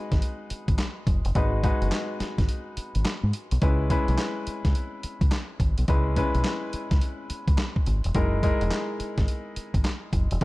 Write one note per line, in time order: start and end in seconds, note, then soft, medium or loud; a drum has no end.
0.00 1.35 G#3 medium
0.00 1.36 D#4 medium
0.00 1.36 F#4 medium
0.00 1.36 B4 loud
0.12 0.20 G#1 medium
0.12 kick medium
0.12 snare medium
0.12 closed hi-hat medium
0.22 closed hi-hat medium
0.50 muted fingered electric bass stroke soft
0.50 closed hi-hat medium
0.68 0.76 G#1 medium
0.68 kick medium
0.68 closed hi-hat medium
0.79 snare loud
0.79 clap medium
0.79 closed hi-hat medium
1.07 1.21 F#1 medium
1.07 kick medium
1.07 closed hi-hat medium
1.25 1.33 F#1 medium
1.25 closed hi-hat medium
1.35 1.71 G#1 loud
1.35 1.57 G#3 medium
1.35 1.57 D#4 medium
1.35 1.57 F#4 medium
1.35 1.57 B4 medium
1.35 kick loud
1.35 closed hi-hat medium
1.63 2.41 G#3 medium
1.63 2.41 D#4 medium
1.63 2.41 F#4 medium
1.63 2.42 B4 medium
1.63 kick loud
1.63 closed hi-hat medium
1.82 1.90 F#1 medium
1.82 closed hi-hat soft
1.92 snare loud
1.92 clap medium
1.92 closed hi-hat medium
2.20 muted fingered electric bass stroke soft
2.20 snare medium
2.20 closed hi-hat medium
2.38 2.46 G#1 medium
2.38 kick medium
2.38 snare medium
2.38 closed hi-hat medium
2.49 closed hi-hat medium
2.77 muted fingered electric bass stroke soft
2.77 closed hi-hat medium
2.95 3.03 G#1 medium
2.95 closed hi-hat medium
3.05 snare loud
3.05 clap medium
3.05 closed hi-hat medium
3.23 3.31 G#2 medium
3.33 closed hi-hat medium
3.51 3.60 B1 medium
3.51 closed hi-hat medium
3.61 3.98 C#2 loud
3.61 3.83 G#3 medium
3.61 3.83 C#4 medium
3.61 3.83 E4 medium
3.61 3.84 B4 medium
3.61 kick loud
3.61 closed hi-hat medium
3.90 4.68 G#3 medium
3.90 4.68 C#4 medium
3.90 4.68 E4 medium
3.90 4.68 B4 loud
3.90 kick loud
3.90 closed hi-hat medium
4.08 4.16 B1 medium
4.08 closed hi-hat soft
4.18 snare loud
4.18 clap medium
4.18 closed hi-hat medium
4.47 muted fingered electric bass stroke soft
4.47 closed hi-hat medium
4.65 4.73 C#2 medium
4.65 kick medium
4.65 snare medium
4.65 closed hi-hat medium
4.75 closed hi-hat medium
5.03 muted fingered electric bass stroke soft
5.03 closed hi-hat medium
5.21 5.29 C#2 medium
5.21 kick medium
5.21 closed hi-hat medium
5.32 snare loud
5.32 clap medium
5.32 closed hi-hat medium
5.60 5.74 G#1 medium
5.60 kick medium
5.60 closed hi-hat medium
5.78 5.86 B1 medium
5.78 closed hi-hat medium
5.88 6.24 C#2 loud
5.88 6.10 G#3 medium
5.88 6.10 C#4 medium
5.88 6.10 E4 medium
5.88 6.10 B4 medium
5.88 kick loud
5.88 closed hi-hat medium
6.16 6.94 G#3 medium
6.16 6.94 C#4 medium
6.16 6.94 E4 medium
6.16 6.95 B4 loud
6.16 kick loud
6.16 closed hi-hat medium
6.35 6.43 B1 medium
6.35 closed hi-hat soft
6.44 snare loud
6.44 clap medium
6.44 closed hi-hat medium
6.73 muted fingered electric bass stroke soft
6.73 closed hi-hat medium
6.91 6.99 C#2 medium
6.91 kick medium
6.91 snare medium
6.91 closed hi-hat medium
7.01 closed hi-hat medium
7.30 muted fingered electric bass stroke soft
7.30 closed hi-hat medium
7.48 7.56 C#2 medium
7.48 kick loud
7.48 closed hi-hat medium
7.58 snare loud
7.58 clap medium
7.58 closed hi-hat medium
7.76 kick medium
7.86 8.01 G#1 medium
7.86 closed hi-hat medium
8.04 8.13 E1 medium
8.04 closed hi-hat medium
8.14 8.50 F#1 loud
8.14 8.36 G#3 medium
8.14 8.36 D#4 medium
8.14 8.36 E4 medium
8.14 8.36 A#4 medium
8.14 kick loud
8.14 closed hi-hat medium
8.43 9.20 G#3 medium
8.43 9.21 D#4 medium
8.43 9.21 E4 medium
8.43 9.21 A#4 medium
8.43 kick loud
8.43 closed hi-hat medium
8.61 8.69 E1 loud
8.61 closed hi-hat medium
8.71 snare loud
8.71 clap medium
8.71 closed hi-hat medium
9.00 muted fingered electric bass stroke soft
9.00 closed hi-hat medium
9.18 9.26 G#1 medium
9.18 kick medium
9.18 snare medium
9.18 closed hi-hat medium
9.28 closed hi-hat medium
9.56 muted fingered electric bass stroke soft
9.56 closed hi-hat medium
9.74 9.82 G#1 medium
9.74 kick medium
9.74 closed hi-hat medium
9.85 snare loud
9.85 clap medium
9.85 closed hi-hat medium
10.13 10.27 F#1 medium
10.13 kick medium
10.13 closed hi-hat medium
10.31 10.39 E1 medium
10.31 closed hi-hat medium
10.41 10.44 G#3 medium
10.41 closed hi-hat medium